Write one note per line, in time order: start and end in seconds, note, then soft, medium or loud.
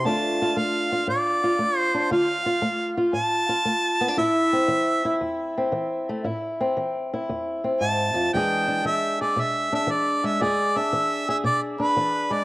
0.05 0.53 D3 medium
0.05 0.56 A3 medium
0.05 1.93 D4 medium
0.05 0.42 F4 medium
0.05 0.59 A5 medium
0.42 0.92 F4 medium
0.57 1.05 A3 medium
0.57 1.08 F5 medium
0.92 1.43 F4 medium
1.07 1.56 A2 medium
1.07 1.78 D5 medium
1.44 2.10 F4 medium
1.59 2.07 A3 medium
1.78 2.08 C5 medium
1.94 2.09 D4 medium
2.11 2.59 D3 medium
2.11 2.45 F4 medium
2.11 2.94 F5 medium
2.46 2.96 F4 medium
2.62 3.11 A3 medium
2.97 3.48 F4 medium
3.13 3.62 A2 medium
3.13 4.14 A5 loud
3.49 4.16 F4 medium
3.65 4.14 A3 medium
4.01 4.08 B3 medium
4.08 4.17 D4 medium
4.17 4.66 A2 medium
4.17 5.05 E4 medium
4.17 5.18 E5 loud
4.53 5.56 C4 medium
4.68 5.17 E3 medium
5.05 6.25 E4 medium
5.21 5.70 E2 medium
5.58 6.24 C4 medium
5.72 6.21 E3 medium
6.09 6.24 A3 medium
6.24 6.73 A2 medium
6.24 7.13 E4 medium
6.61 7.63 C4 medium
6.77 7.25 E3 medium
7.14 8.36 E4 medium
7.29 7.78 E2 medium
7.64 8.31 C4 medium
7.81 8.14 G#2 medium
7.81 8.29 A5 medium
8.14 8.32 F2 medium
8.34 8.82 E2 medium
8.34 8.84 E3 medium
8.34 10.23 G#3 medium
8.34 8.68 D4 medium
8.34 9.21 G#4 medium
8.34 8.82 G5 medium
8.68 9.72 D4 medium
8.85 9.33 E3 medium
8.85 9.18 E5 loud
9.21 10.42 G#4 medium
9.21 9.42 D5 medium
9.36 9.85 B2 medium
9.36 9.74 E5 medium
9.73 10.44 D4 medium
9.73 9.92 E5 medium
9.87 10.36 E3 medium
9.87 10.27 D5 medium
10.24 10.79 G#3 medium
10.24 10.43 E5 medium
10.41 10.90 E2 medium
10.41 11.28 G#4 medium
10.41 10.79 D5 medium
10.76 11.78 D4 medium
10.76 11.29 E5 medium
10.93 11.41 E3 medium
11.29 12.44 G#4 medium
11.29 11.37 E5 medium
11.44 11.93 B2 medium
11.44 11.61 D5 medium
11.79 12.44 D4 medium
11.79 12.34 B4 medium
11.96 12.44 E3 medium
12.31 12.44 G#3 medium
12.31 12.44 D5 medium